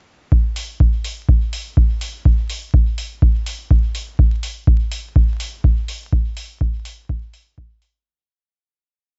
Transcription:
0.32 kick loud
0.56 open hi-hat medium
0.80 kick loud
1.04 open hi-hat medium
1.29 kick loud
1.53 open hi-hat medium
1.77 kick loud
2.01 open hi-hat medium
2.25 kick loud
2.50 open hi-hat medium
2.74 kick loud
2.98 open hi-hat medium
3.22 kick loud
3.46 open hi-hat medium
3.71 kick loud
3.95 open hi-hat medium
4.19 kick loud
4.43 open hi-hat medium
4.67 kick loud
4.92 open hi-hat medium
5.16 kick loud
5.40 open hi-hat medium
5.64 kick loud
5.88 open hi-hat medium
6.13 kick loud
6.37 open hi-hat medium
6.61 kick loud
6.85 open hi-hat medium
7.09 kick loud
7.34 open hi-hat medium
7.58 kick loud
7.82 open hi-hat medium

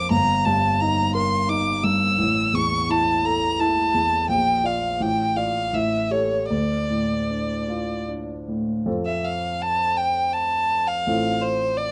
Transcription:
0.00 0.13 A#1 soft
0.00 0.13 F2 soft
0.00 0.14 F4 soft
0.00 0.14 A#4 soft
0.00 0.10 D6 medium
0.11 2.16 G1 soft
0.11 0.46 A#5 medium
0.45 1.02 G2 soft
0.45 0.82 A5 medium
0.80 1.36 D#4 soft
0.80 1.14 A#5 medium
1.15 1.70 A#4 soft
1.15 1.50 C6 medium
1.48 2.05 D#4 soft
1.48 1.85 D6 medium
1.83 2.19 G2 soft
1.83 2.56 E6 medium
2.18 4.24 A1 soft
2.53 3.10 E2 soft
2.53 2.92 C#6 medium
2.89 3.45 E4 soft
2.89 3.26 A5 medium
3.25 3.80 A4 soft
3.25 3.61 A#5 medium
3.59 4.15 E4 soft
3.59 4.29 A5 medium
3.94 4.29 E2 soft
4.29 4.98 A#1 soft
4.29 4.67 G5 medium
4.64 4.96 F4 soft
4.64 4.96 D5 soft
4.64 5.03 F5 medium
5.00 5.71 A1 soft
5.00 5.38 G5 medium
5.36 5.69 F4 soft
5.36 5.70 D5 soft
5.36 5.75 F5 medium
5.73 6.48 A1 soft
5.73 6.12 E5 medium
6.11 6.46 G4 soft
6.11 6.47 A4 soft
6.11 6.50 C#5 soft
6.50 8.82 D2 soft
6.50 8.05 D5 soft
6.90 7.53 A2 soft
7.30 7.93 D4 soft
7.68 8.32 F4 soft
8.09 8.71 D4 soft
8.48 8.87 A2 soft
8.86 11.02 F2 soft
8.86 11.02 C4 soft
8.86 11.02 F4 soft
8.86 11.02 A4 soft
9.06 9.26 E5 soft
9.24 9.63 F5 soft
9.62 9.98 A5 medium
9.97 10.34 G5 medium
10.33 10.89 A5 medium
10.87 11.43 F5 medium
11.07 11.92 A1 soft
11.07 11.92 C4 soft
11.07 11.92 F4 soft
11.07 11.92 A4 soft
11.42 11.78 C5 medium
11.77 11.92 D5 medium

